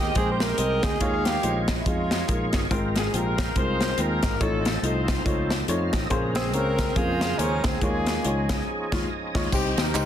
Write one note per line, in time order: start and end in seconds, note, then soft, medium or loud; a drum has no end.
0.00 0.98 G#3 medium
0.00 0.98 C4 medium
0.00 0.15 G4 medium
0.00 0.17 G4 medium
0.00 0.55 G#4 medium
0.00 0.98 A#4 medium
0.00 0.16 D#5 medium
0.00 0.97 G5 medium
0.15 0.52 A#1 medium
0.15 0.46 G#3 medium
0.15 0.47 C4 medium
0.15 0.97 D#4 medium
0.15 0.47 G4 medium
0.15 0.57 G4 medium
0.15 0.31 G#4 loud
0.15 0.47 C5 medium
0.15 0.58 C5 medium
0.15 kick medium
0.15 closed hi-hat medium
0.32 0.43 C5 medium
0.40 0.86 A#4 loud
0.40 snare loud
0.40 closed hi-hat medium
0.58 0.80 C2 medium
0.58 0.89 G#3 medium
0.58 0.89 C4 medium
0.58 0.98 G4 medium
0.58 0.90 G4 medium
0.58 0.98 G#4 medium
0.58 0.90 C5 medium
0.58 0.98 D#5 medium
0.58 closed hi-hat medium
0.83 0.98 D2 medium
0.83 1.27 G#4 loud
0.83 kick medium
0.83 snare loud
0.83 closed hi-hat medium
1.00 1.37 D#2 medium
1.00 1.64 D#3 medium
1.00 1.31 G#3 medium
1.00 2.68 G#3 medium
1.00 1.32 D#4 medium
1.00 2.68 D#4 medium
1.00 1.32 F4 medium
1.00 2.68 F4 medium
1.00 1.82 A#4 medium
1.00 1.07 C5 medium
1.00 1.32 C#5 loud
1.00 1.83 C#5 medium
1.00 1.69 F5 medium
1.00 kick medium
1.00 closed hi-hat medium
1.06 2.70 C#5 medium
1.25 1.62 G4 medium
1.25 snare loud
1.25 closed hi-hat medium
1.43 1.80 A#1 medium
1.43 1.74 G#3 medium
1.43 1.74 D#4 medium
1.43 1.74 F4 medium
1.43 1.75 C5 medium
1.43 closed hi-hat medium
1.68 kick medium
1.68 snare loud
1.68 closed hi-hat medium
1.80 1.89 E4 medium
1.85 2.22 F2 medium
1.85 2.17 G#3 medium
1.85 2.17 D#4 medium
1.85 2.17 F4 medium
1.85 2.54 F4 medium
1.85 2.17 G#4 medium
1.85 kick loud
1.85 closed hi-hat medium
2.11 snare loud
2.11 closed hi-hat soft
2.28 2.50 A#1 medium
2.28 2.59 G#3 medium
2.28 2.59 D#4 medium
2.28 2.59 F4 medium
2.28 2.59 A#4 medium
2.28 kick medium
2.28 closed hi-hat loud
2.53 2.69 G1 medium
2.53 kick medium
2.53 snare loud
2.53 closed hi-hat medium
2.71 3.07 G#1 medium
2.71 3.35 G#2 medium
2.71 3.02 G#3 medium
2.71 4.38 G#3 medium
2.71 3.02 C4 medium
2.71 4.37 C4 medium
2.71 3.02 F4 medium
2.71 4.38 F4 medium
2.71 3.02 A#4 loud
2.71 4.38 A#4 medium
2.71 kick medium
2.71 closed hi-hat medium
2.96 3.14 G#4 medium
2.96 snare loud
2.96 closed hi-hat medium
3.13 3.50 A#1 medium
3.13 3.44 G#3 medium
3.13 3.44 C4 medium
3.13 3.55 D#4 medium
3.13 3.45 F4 medium
3.13 3.55 F4 medium
3.13 3.45 G4 medium
3.13 3.57 A#4 medium
3.13 closed hi-hat medium
3.38 kick medium
3.38 snare medium
3.38 closed hi-hat medium
3.56 3.92 C2 medium
3.56 3.87 G#3 medium
3.56 3.87 C4 medium
3.56 3.99 D#4 medium
3.56 3.99 F4 medium
3.56 3.87 F4 medium
3.56 3.87 A#4 medium
3.56 3.99 C5 loud
3.56 kick loud
3.56 closed hi-hat medium
3.81 snare medium
3.81 closed hi-hat medium
3.98 4.19 D#2 medium
3.98 4.29 G#3 medium
3.98 4.29 C4 medium
3.98 4.39 D#4 medium
3.98 4.29 F4 medium
3.98 4.39 F4 medium
3.98 4.29 G#4 medium
3.98 4.42 A#4 medium
3.98 closed hi-hat medium
4.23 4.38 G#1 medium
4.23 kick medium
4.23 snare loud
4.23 closed hi-hat medium
4.40 4.77 A1 medium
4.40 5.04 A2 medium
4.40 6.08 F3 medium
4.40 4.71 A3 medium
4.40 6.08 C4 medium
4.40 5.23 C4 medium
4.40 4.72 D#4 medium
4.40 6.08 D#4 medium
4.40 4.83 D#4 medium
4.40 4.72 F4 medium
4.40 6.08 A4 medium
4.40 4.81 A4 medium
4.40 4.72 C#5 medium
4.40 kick medium
4.40 closed hi-hat medium
4.65 snare loud
4.65 closed hi-hat medium
4.83 5.19 C2 medium
4.83 5.14 A3 medium
4.83 5.14 D#4 medium
4.83 5.65 D#4 medium
4.83 5.14 F4 medium
4.83 5.65 F4 medium
4.83 5.69 C5 medium
4.83 5.15 D#5 medium
4.83 closed hi-hat medium
5.08 kick medium
5.08 snare loud
5.08 closed hi-hat medium
5.25 5.62 C#2 medium
5.25 5.56 A3 medium
5.25 5.56 D#4 medium
5.25 5.57 F4 medium
5.25 5.57 C#5 medium
5.25 kick loud
5.25 closed hi-hat medium
5.51 5.67 A5 medium
5.51 snare loud
5.51 closed hi-hat medium
5.68 5.90 F2 medium
5.68 5.99 A3 medium
5.68 5.99 D#4 medium
5.68 6.00 F4 medium
5.68 6.00 C#5 medium
5.68 5.92 F5 medium
5.68 closed hi-hat medium
5.93 6.08 A1 medium
5.93 6.10 D#5 medium
5.93 kick medium
5.93 snare loud
5.93 closed hi-hat medium
6.10 6.53 A#1 loud
6.10 6.74 A#2 medium
6.10 7.78 C#3 medium
6.10 7.78 G#3 medium
6.10 6.42 A#3 loud
6.10 7.78 C4 medium
6.10 6.42 C#4 medium
6.10 6.42 G#4 loud
6.10 7.78 A#4 medium
6.10 6.42 C5 loud
6.10 kick medium
6.10 closed hi-hat medium
6.35 6.99 C4 loud
6.35 6.52 G#4 medium
6.35 snare loud
6.35 closed hi-hat medium
6.53 6.90 C#2 medium
6.53 6.84 A#3 medium
6.53 7.35 C4 medium
6.53 6.85 C#4 medium
6.53 6.95 F4 medium
6.53 6.85 G#4 medium
6.53 6.96 A#4 medium
6.53 6.85 C#5 medium
6.53 closed hi-hat medium
6.79 kick medium
6.79 snare loud
6.79 closed hi-hat medium
6.96 7.32 F2 medium
6.96 7.28 A#3 medium
6.96 7.28 C#4 medium
6.96 7.62 F4 medium
6.96 7.40 F4 loud
6.96 7.62 G#4 medium
6.96 7.28 G#4 medium
6.96 7.28 A#4 medium
6.96 7.39 C5 loud
6.96 kick medium
6.96 closed hi-hat medium
7.21 snare loud
7.21 closed hi-hat medium
7.38 7.60 D#2 medium
7.38 7.70 A#3 medium
7.38 7.65 C#4 medium
7.38 7.70 C#4 medium
7.38 7.71 G#4 medium
7.38 7.64 A#4 medium
7.38 7.71 C5 medium
7.38 closed hi-hat medium
7.63 7.79 D2 medium
7.63 7.83 C4 medium
7.63 9.05 C#4 medium
7.63 9.05 F4 medium
7.63 9.09 G#4 medium
7.63 kick medium
7.63 snare loud
7.63 closed hi-hat medium
7.81 8.18 D#2 medium
7.81 8.46 D#3 medium
7.81 9.49 F3 medium
7.81 8.13 G#3 medium
7.81 8.50 A#3 medium
7.81 9.49 C#4 medium
7.81 9.49 D#4 medium
7.81 8.13 D#4 medium
7.81 8.13 F4 medium
7.81 7.88 G4 medium
7.81 8.14 C#5 medium
7.81 kick loud
7.81 closed hi-hat medium
7.87 9.52 G#4 medium
8.06 snare loud
8.06 closed hi-hat medium
8.24 8.61 C#2 medium
8.24 8.55 G#3 medium
8.24 8.55 D#4 medium
8.24 8.56 F4 medium
8.24 8.56 C#5 medium
8.24 closed hi-hat medium
8.49 kick medium
8.49 snare loud
8.49 closed hi-hat medium
8.92 9.04 D#2 loud
8.92 9.04 G#3 medium
8.92 9.04 D#4 medium
8.92 9.04 F4 medium
8.92 9.04 C#5 medium
8.92 9.00 G#5 medium
8.92 kick medium
8.92 snare medium
8.92 crash medium
9.02 9.09 F5 medium
9.10 9.49 D#5 medium
9.34 9.47 D#2 medium
9.34 9.46 G#3 medium
9.34 9.46 D#4 medium
9.34 9.47 F4 medium
9.34 9.47 C#5 loud
9.34 kick loud
9.34 snare medium
9.34 crash medium
9.52 9.74 C2 loud
9.52 10.05 C3 medium
9.52 10.05 C4 medium
9.52 9.83 D#4 medium
9.52 9.77 D#4 medium
9.52 10.05 D#4 medium
9.52 9.59 F#4 medium
9.52 9.83 G4 medium
9.52 9.76 G4 medium
9.52 9.83 C5 medium
9.52 kick medium
9.52 crash medium
9.52 tambourine medium
9.58 10.05 G4 medium
9.77 9.92 D#2 medium
9.77 10.05 D#4 medium
9.77 10.05 G4 medium
9.77 10.05 A#4 medium
9.77 snare loud
9.77 ride medium
9.77 tambourine medium
9.94 10.05 C#2 medium
9.94 10.05 D#4 medium
9.94 10.05 G4 medium
9.94 10.05 C5 medium
9.94 clap medium
9.94 ride medium
9.94 tambourine loud